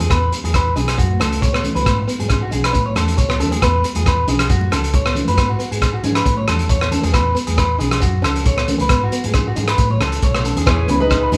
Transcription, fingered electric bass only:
0, 0, Header, 1, 2, 480
1, 0, Start_track
1, 0, Key_signature, 4, "major"
1, 0, Tempo, 440205
1, 108, Time_signature, 4, 2, 24, 8
1, 12399, End_track
2, 0, Start_track
2, 0, Title_t, "Fingered electric bass"
2, 0, Program_c, 0, 33
2, 0, Note_on_c, 0, 40, 84
2, 97, Note_off_c, 0, 40, 0
2, 117, Note_on_c, 0, 40, 92
2, 322, Note_off_c, 0, 40, 0
2, 483, Note_on_c, 0, 40, 79
2, 787, Note_off_c, 0, 40, 0
2, 825, Note_on_c, 0, 35, 88
2, 1035, Note_off_c, 0, 35, 0
2, 1078, Note_on_c, 0, 42, 88
2, 1283, Note_off_c, 0, 42, 0
2, 1307, Note_on_c, 0, 37, 77
2, 1836, Note_off_c, 0, 37, 0
2, 1912, Note_on_c, 0, 37, 83
2, 2011, Note_off_c, 0, 37, 0
2, 2031, Note_on_c, 0, 44, 94
2, 2238, Note_off_c, 0, 44, 0
2, 2402, Note_on_c, 0, 44, 76
2, 2706, Note_off_c, 0, 44, 0
2, 2759, Note_on_c, 0, 35, 87
2, 2963, Note_off_c, 0, 35, 0
2, 2992, Note_on_c, 0, 45, 93
2, 3199, Note_off_c, 0, 45, 0
2, 3232, Note_on_c, 0, 40, 77
2, 3439, Note_off_c, 0, 40, 0
2, 3468, Note_on_c, 0, 37, 64
2, 3683, Note_off_c, 0, 37, 0
2, 3708, Note_on_c, 0, 39, 71
2, 3923, Note_off_c, 0, 39, 0
2, 3949, Note_on_c, 0, 40, 90
2, 4157, Note_off_c, 0, 40, 0
2, 4314, Note_on_c, 0, 40, 78
2, 4621, Note_off_c, 0, 40, 0
2, 4661, Note_on_c, 0, 35, 92
2, 4872, Note_off_c, 0, 35, 0
2, 4903, Note_on_c, 0, 42, 90
2, 5114, Note_off_c, 0, 42, 0
2, 5148, Note_on_c, 0, 37, 74
2, 5677, Note_off_c, 0, 37, 0
2, 5756, Note_on_c, 0, 42, 77
2, 5853, Note_off_c, 0, 42, 0
2, 5866, Note_on_c, 0, 44, 94
2, 6075, Note_off_c, 0, 44, 0
2, 6233, Note_on_c, 0, 44, 75
2, 6541, Note_off_c, 0, 44, 0
2, 6586, Note_on_c, 0, 44, 84
2, 6796, Note_off_c, 0, 44, 0
2, 6821, Note_on_c, 0, 45, 84
2, 7033, Note_off_c, 0, 45, 0
2, 7070, Note_on_c, 0, 40, 81
2, 7598, Note_off_c, 0, 40, 0
2, 7675, Note_on_c, 0, 40, 87
2, 7773, Note_off_c, 0, 40, 0
2, 7785, Note_on_c, 0, 40, 98
2, 7995, Note_off_c, 0, 40, 0
2, 8154, Note_on_c, 0, 40, 80
2, 8463, Note_off_c, 0, 40, 0
2, 8511, Note_on_c, 0, 35, 90
2, 8719, Note_off_c, 0, 35, 0
2, 8750, Note_on_c, 0, 42, 87
2, 8958, Note_off_c, 0, 42, 0
2, 8986, Note_on_c, 0, 37, 75
2, 9517, Note_off_c, 0, 37, 0
2, 9593, Note_on_c, 0, 37, 81
2, 9693, Note_off_c, 0, 37, 0
2, 9707, Note_on_c, 0, 44, 96
2, 9917, Note_off_c, 0, 44, 0
2, 10083, Note_on_c, 0, 44, 77
2, 10388, Note_off_c, 0, 44, 0
2, 10437, Note_on_c, 0, 44, 86
2, 10643, Note_off_c, 0, 44, 0
2, 10669, Note_on_c, 0, 45, 86
2, 10878, Note_off_c, 0, 45, 0
2, 10908, Note_on_c, 0, 37, 76
2, 11118, Note_off_c, 0, 37, 0
2, 11149, Note_on_c, 0, 35, 81
2, 11469, Note_off_c, 0, 35, 0
2, 11524, Note_on_c, 0, 39, 81
2, 11619, Note_off_c, 0, 39, 0
2, 11635, Note_on_c, 0, 40, 98
2, 11842, Note_off_c, 0, 40, 0
2, 11875, Note_on_c, 0, 37, 83
2, 12291, Note_off_c, 0, 37, 0
2, 12346, Note_on_c, 0, 41, 82
2, 12399, Note_off_c, 0, 41, 0
2, 12399, End_track
0, 0, End_of_file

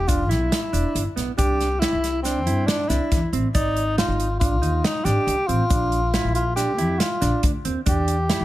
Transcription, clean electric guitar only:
0, 0, Header, 1, 2, 480
1, 0, Start_track
1, 0, Tempo, 432277
1, 1533, Time_signature, 5, 2, 24, 8
1, 9381, End_track
2, 0, Start_track
2, 0, Title_t, "Clean electric guitar"
2, 0, Program_c, 0, 27
2, 87, Note_on_c, 0, 62, 74
2, 252, Note_off_c, 0, 62, 0
2, 324, Note_on_c, 0, 64, 66
2, 653, Note_off_c, 0, 64, 0
2, 810, Note_on_c, 0, 62, 81
2, 1137, Note_off_c, 0, 62, 0
2, 1289, Note_on_c, 0, 59, 65
2, 1453, Note_off_c, 0, 59, 0
2, 1529, Note_on_c, 0, 62, 83
2, 1856, Note_off_c, 0, 62, 0
2, 2016, Note_on_c, 0, 64, 75
2, 2341, Note_off_c, 0, 64, 0
2, 2502, Note_on_c, 0, 62, 72
2, 2662, Note_off_c, 0, 62, 0
2, 2738, Note_on_c, 0, 64, 71
2, 3062, Note_off_c, 0, 64, 0
2, 3219, Note_on_c, 0, 62, 74
2, 3543, Note_off_c, 0, 62, 0
2, 3697, Note_on_c, 0, 60, 67
2, 3859, Note_off_c, 0, 60, 0
2, 3938, Note_on_c, 0, 74, 82
2, 4263, Note_off_c, 0, 74, 0
2, 4414, Note_on_c, 0, 63, 72
2, 4739, Note_off_c, 0, 63, 0
2, 4894, Note_on_c, 0, 62, 67
2, 5057, Note_off_c, 0, 62, 0
2, 5128, Note_on_c, 0, 63, 62
2, 5456, Note_off_c, 0, 63, 0
2, 5613, Note_on_c, 0, 62, 72
2, 5939, Note_off_c, 0, 62, 0
2, 6092, Note_on_c, 0, 60, 59
2, 6255, Note_off_c, 0, 60, 0
2, 6328, Note_on_c, 0, 62, 79
2, 6656, Note_off_c, 0, 62, 0
2, 6817, Note_on_c, 0, 64, 79
2, 7141, Note_off_c, 0, 64, 0
2, 7290, Note_on_c, 0, 62, 73
2, 7454, Note_off_c, 0, 62, 0
2, 7532, Note_on_c, 0, 64, 68
2, 7858, Note_off_c, 0, 64, 0
2, 8008, Note_on_c, 0, 62, 76
2, 8335, Note_off_c, 0, 62, 0
2, 8494, Note_on_c, 0, 60, 66
2, 8656, Note_off_c, 0, 60, 0
2, 8727, Note_on_c, 0, 62, 78
2, 9054, Note_off_c, 0, 62, 0
2, 9208, Note_on_c, 0, 64, 74
2, 9381, Note_off_c, 0, 64, 0
2, 9381, End_track
0, 0, End_of_file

